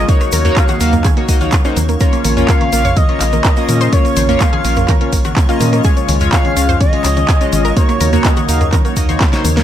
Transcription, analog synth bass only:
0.33 D#2
0.81 D#2
1.29 C#2
1.77 D#2
2.25 A#1
2.73 A#1
3.21 A#1
3.69 A#2
4.17 A#1
4.65 A#1
5.13 A#1
5.61 A#2
6.09 C#2
6.57 C#2
7.05 C#2
7.53 G#1
8.01 D#2
8.49 D#2
8.97 D#2
9.45 D#2

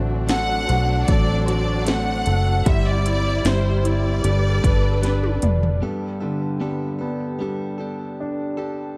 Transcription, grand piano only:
Already playing: A3 F#4
0.31 A4
0.71 F#4
1.10 A4
1.48 F#4
1.88 A3
2.27 A4
2.66 G3
3.06 E4
3.46 G3
3.85 E4
4.25 G3
4.64 D4
5.02 B4
5.43 D4
5.83 G2
6.22 D3
6.61 G3
7.01 B3
7.41 G3
8.20 D4

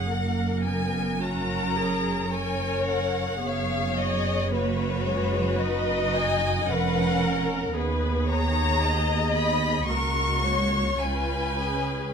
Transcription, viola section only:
Already playing: G#4
0.10 A#3 A#4
0.66 B3
1.21 C#4 F#4
1.76 G#4
2.30 C#4 A#4
3.42 B3 G#4
4.53 A#3 F#4
5.05 G#3
5.57 D#4
6.67 C#4 A#4
7.75 B3 G#4
9.88 A#3 F#4
10.98 C#4 F4
11.60 G#4

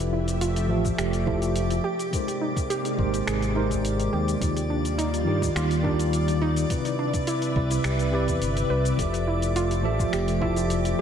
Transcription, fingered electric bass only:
Already playing: F1
0.70 A1
0.99 F1
2.99 G#1
3.27 G#1
4.13 D#2
4.41 D#2
5.27 G2
5.56 D#2
7.56 C2
7.84 C2
8.28 E2
8.41 G1
8.70 C2
8.99 F1
9.84 A1
10.13 F1

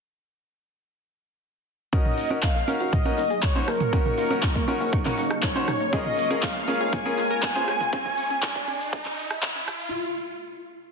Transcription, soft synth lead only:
1.93 D#5
2.43 F5
2.93 D#5
3.43 C#5
3.68 A#4
5.43 C#5
5.93 D#5
6.43 F5
6.93 G#5

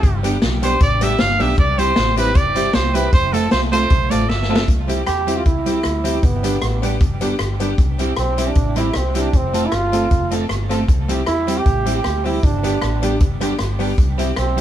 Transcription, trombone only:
5.06 G4
5.37 F4
5.46 E4
6.24 B3
8.18 C4
8.49 D4
8.79 E4
8.96 C4
9.18 D4
9.36 C4
9.66 E4
9.74 F4
11.28 E4
11.57 G4
11.96 G4
12.26 E4
12.44 D4
14.39 C4

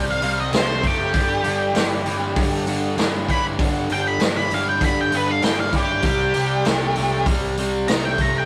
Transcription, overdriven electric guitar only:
Already playing: C3 G3
0.22 C3 G3
0.52 C3 A3
0.83 C3 A3
1.13 G2 D3
1.44 G2 D3
1.74 G2 E3
2.06 G2 E3
2.36 G2 D3
2.67 G2 D3
2.97 G2 E3
3.27 G2 E3
3.59 G2 D3
3.90 G2 D3
4.19 G2 E3
4.52 G2 E3
4.81 G2 D3
5.11 G2 D3
5.43 G2 E3
5.72 G2 E3
6.04 C3 G3
6.34 C3 G3
6.65 C3 A3
6.97 C3 A3
7.26 C3 G3
7.58 C3 G3
7.88 C3 A3
8.19 C3 A3

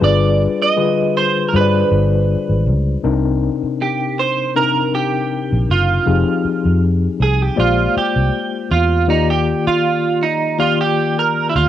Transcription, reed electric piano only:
0.01 G3 D4 F4 G#4 B4
0.77 D3 G3 F4 G#4 B4
1.53 G3 D4 F4 G#4 C5
1.61 D5
3.03 C3 C4 D4 D#4 A#4
4.56 C3 C4 D4 D#4 A#4
6.06 F3 C4 D#4 G4 G#4
7.56 G#3 A#3 F4 G4 C5 D5
9.07 D#3 A#3 F4 G4 D5
10.58 D#3 A#3 F4 G4 D5

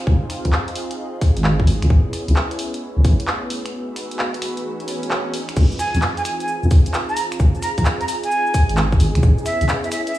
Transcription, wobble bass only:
0.07 C#2
0.45 F2
1.37 G#1
1.82 C#2
1.90 A1
2.28 C#2
2.97 C#2
3.05 A1
5.56 C#2
5.95 F2
6.63 F2
6.71 C#2
7.40 C#2
7.78 F2
8.69 G#1
9.15 C#2
9.23 A1
9.61 C#2

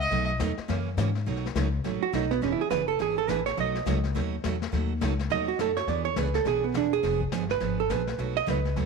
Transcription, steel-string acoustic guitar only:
0.11 B2 F#3 A3 D#4 F#4
0.40 B2 F#3 A3 D#4 F#4
0.68 C#3 E3 A#3 C#4 F#4
0.97 C#3 E3 A#3 C#4 F#4
1.26 B2 F#3 A3 D#4 F#4
1.56 B2 F#3 A3 D#4 F#4
1.84 B2 F#3 A3 D#4 F#4
2.13 B2 F#3 A3 D#4 F#4
2.41 E3 B3 D4 G#4
2.70 E3 B3 D4 G#4
2.99 E3 B3 D4 G#4
3.28 E3 B3 D4 G#4
3.57 B2 F#3 A3 D#4 F#4
3.86 B2 F#3 A3 D#4 F#4
4.14 B2 F#3 A3 D#4 F#4
4.44 B2 F#3 A3 D#4 F#4
4.72 B2 F#3 A3 D#4 F#4
5.01 B2 F#3 A3 D#4 F#4
5.30 B2 F#3 A3 D#4 F#4
5.59 B2 F#3 A3 D#4 F#4
5.88 E3 B3 D4 G#4
6.16 E3 B3 D4 G#4
6.45 E3 B3 D4 G#4
6.74 E3 B3 D4 G#4
7.03 F3 B3 D4 G#4
7.32 F3 B3 D4 G#4
7.60 F3 B3 D4 G#4
7.89 F3 B3 D4 G#4
8.18 B2 F#3 A3 D#4 F#4
8.46 B2 F#3 A3 D#4 F#4
8.76 B2 F#3 A3 D#4 F#4

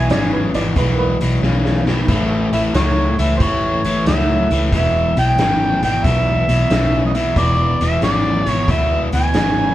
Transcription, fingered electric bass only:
0.11 G#1
0.55 G#1
0.76 B1
1.21 B1
1.42 B1
2.08 A1
2.52 A1
2.74 C#2
3.19 C#2
3.40 G1
3.84 G1
4.06 C#2
4.51 C#2
4.72 E1
5.16 B1
5.37 G#1
5.82 G#1
6.04 B1
6.48 B1
6.70 B1
7.36 E1
7.80 E1
8.02 G#1
8.47 G#1
8.68 D2
9.12 D2
9.34 G#1

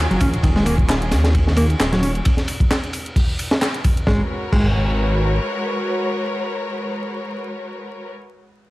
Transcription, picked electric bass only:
0.11 F#3
0.21 C#4
0.44 D#3
0.56 G#3
0.66 A#3
1.57 A#3
1.92 F#3
2.03 C#4
4.07 G#3
4.53 G#3

